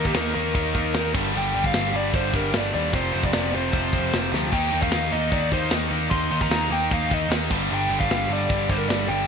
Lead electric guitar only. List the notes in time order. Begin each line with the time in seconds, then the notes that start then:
0.07 G4
0.17 A#4
0.35 A#4
1.37 G5
1.66 F5
1.96 D5
2.15 C5
2.36 A#4
2.57 D5
2.74 D5
2.95 C5
3.25 D5
3.34 D5
3.55 C5
4.53 G5
4.82 F5
5.13 D#5
5.33 D5
5.53 C5
6.10 C6
6.42 A#5
6.72 G5
6.93 F5
7.13 D#5
7.74 G5
8.00 F5
8.33 D5
8.70 C5
8.78 A#4
8.89 D5
9.08 G5